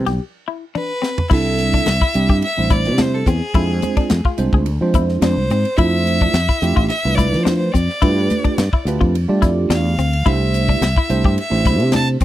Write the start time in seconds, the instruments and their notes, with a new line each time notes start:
Already playing: tine electric piano G3 B3 C4 E4 B4
0.06 fretless electric bass B1, clean electric guitar G4, snare, ride
0.48 clean electric guitar E4
0.75 clean electric guitar D4, violin B4, high tom
1.02 clean electric guitar C4, snare
1.18 floor tom
1.30 fretless electric bass C2, tine electric piano G3 C4 D4 E4 A4, clean electric guitar E4, violin E5, kick, crash, muted conga
1.58 hi-hat pedal, ride, muted conga
1.73 clean electric guitar D4, kick
1.86 fretless electric bass C2, snare, ride, high conga
2.01 clean electric guitar E4, kick, snare
2.14 fretless electric bass C2, tine electric piano G3 C4 D4 E4 G4, hi-hat pedal, ride
2.29 fretless electric bass G2, clean electric guitar G4, kick
2.42 violin E5, ride, muted conga
2.57 fretless electric bass A1, tine electric piano G3 C4 D4 E4 C5
2.70 clean electric guitar E4, violin D5, kick, snare, hi-hat pedal, ride, high conga
2.85 fretless electric bass C3, snare, ride
2.98 clean electric guitar D4, violin C5, snare, ride, high conga
3.15 violin A4
3.26 fretless electric bass E2, clean electric guitar C4, violin G#4, kick, hi-hat pedal, ride
3.54 fretless electric bass F2, tine electric piano G#3 C4 D4 F4 C5, clean electric guitar E4, kick, ride, muted conga
3.82 hi-hat pedal, ride, muted conga, high conga
3.97 clean electric guitar D4, kick, ride
4.10 fretless electric bass F2, snare, ride, high conga
4.25 clean electric guitar F4, kick
4.38 fretless electric bass C2, tine electric piano G#3 C4 D4 F4 C5, hi-hat pedal, ride
4.53 fretless electric bass D2, clean electric guitar G#4, kick
4.66 ride, muted conga
4.81 fretless electric bass F3, tine electric piano G#3 C4 D4 F4 C5
4.94 fretless electric bass F2, clean electric guitar E4, kick, hi-hat pedal, ride
5.09 snare
5.22 fretless electric bass F2, clean electric guitar D4, violin C5, snare, ride, high conga
5.37 fretless electric bass C2
5.50 fretless electric bass G#2, clean electric guitar C4, hi-hat pedal, ride, muted conga
5.65 ride
5.77 fretless electric bass F2, tine electric piano A3 D4 E4 F4 C5, clean electric guitar E4, violin E5, kick, ride, muted conga
6.06 hi-hat pedal, ride, muted conga
6.21 clean electric guitar D4, kick
6.34 fretless electric bass F2, snare, ride, high conga
6.49 clean electric guitar E4, kick, snare
6.62 fretless electric bass F2, tine electric piano A3 D4 E4 F4 G4, hi-hat pedal, ride
6.76 fretless electric bass A1, clean electric guitar F4, kick
6.88 violin E5, ride, muted conga
7.05 fretless electric bass C2, tine electric piano A3 D4 E4 F4 B4, snare
7.15 clean electric guitar E4, violin D5, kick, hi-hat pedal, ride
7.19 high conga
7.32 fretless electric bass F3, snare, ride
7.44 clean electric guitar D4, violin C5, snare, ride, high conga
7.57 violin C5
7.72 fretless electric bass F2, clean electric guitar C4, violin D5, kick, hi-hat pedal, ride, muted conga
7.90 snare
8.02 fretless electric bass G2, tine electric piano A3 D4 F4 G4 B4, clean electric guitar E4, kick, ride, muted conga
8.30 hi-hat pedal, ride, muted conga, high conga
8.44 clean electric guitar D4, kick, ride
8.58 fretless electric bass G2, snare, ride, high conga
8.73 clean electric guitar E4, kick
8.85 fretless electric bass D2, tine electric piano A3 D4 F4 G4 B4, hi-hat pedal, ride
9.01 fretless electric bass F2, clean electric guitar F4, kick
9.15 ride, muted conga
9.28 fretless electric bass G3, tine electric piano A3 D4 F4 G4 D5
9.42 fretless electric bass F2, clean electric guitar E4, kick, snare, hi-hat pedal, ride
9.70 fretless electric bass E2, clean electric guitar D4, violin F5, snare, ride, high conga
9.98 fretless electric bass D2, clean electric guitar C4, hi-hat pedal, ride, muted conga
10.13 ride
10.26 fretless electric bass C2, tine electric piano A3 D4 E4 G4 C5, clean electric guitar E4, violin E5, kick, ride, muted conga
10.54 hi-hat pedal, ride, muted conga
10.68 clean electric guitar D4, kick
10.81 fretless electric bass C2, snare, ride, high conga
10.96 clean electric guitar E4, kick
11.09 fretless electric bass C2, tine electric piano A3 D4 E4 G4 C5, hi-hat pedal, ride
11.24 fretless electric bass G2, clean electric guitar G4, kick
11.38 violin E5, ride, muted conga
11.50 fretless electric bass A1, tine electric piano A3 D4 E4 G4 C5, snare
11.65 clean electric guitar E4, kick, hi-hat pedal, ride, high conga
11.80 fretless electric bass C3, ride
11.92 clean electric guitar D4, violin A5, snare, ride, high conga
12.20 fretless electric bass E2, kick, hi-hat pedal, ride